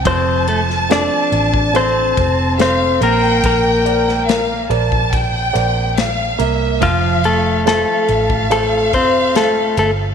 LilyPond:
<<
  \new Staff \with { instrumentName = "Violin section" } { \time 4/4 \key f \major \tempo 4 = 71 a''2. f''8 g''8~ | g''4 f''8 a''8 g''4 f''8 e''8 | f''4 f''2. | }
  \new Staff \with { instrumentName = "Grand piano" } { \time 4/4 \key f \major f4 <c' f' a'>4 <c' f' a'>4 <c' f' a'>8 bes8~ | bes8 <bes' c'' d''>4 <bes' c'' d''>4 <bes' c'' d''>4 bes8 | f4 <f' a' c''>4 <f' a' c''>4 <f' a' c''>4 | }
  \new Staff \with { instrumentName = "Clean electric guitar" } { \time 4/4 \key f \major <c' c''>8 <a a'>8 <d' d''>4 <c' c''>4 <c' c''>8 <bes bes'>8 | <bes bes'>4. r2 r8 | <f f'>8 <a a'>8 <a a'>4 <a a'>8 <c' c''>8 <a a'>8 <a a'>8 | }
  \new Staff \with { instrumentName = "Fingered electric bass" } { \clef bass \time 4/4 \key f \major f,,4~ f,,16 r16 a,,4 f,,4 bes,,8 | bes,,4. bes,,4 bes,,4 c,8 | f,,4~ f,,16 r16 a,,4 f,,4 g,,8 | }
  \new DrumStaff \with { instrumentName = "Drums" } \drummode { \time 4/4 <bd cymr>8 cymr16 sn16 <cymr sn>8 cymr16 bd16 cymr8 <bd cymr>8 <cymr sn>8 cymr8 | <bd cymr>8 cymr16 sn16 <cymr sn>8 cymr16 bd16 <bd cymr>8 cymr8 <cymr sn>8 cymr8 | <bd cymr>8 cymr8 <cymr sn>8 cymr16 bd16 cymr8 <bd cymr>8 <cymr sn>8 cymr8 | }
>>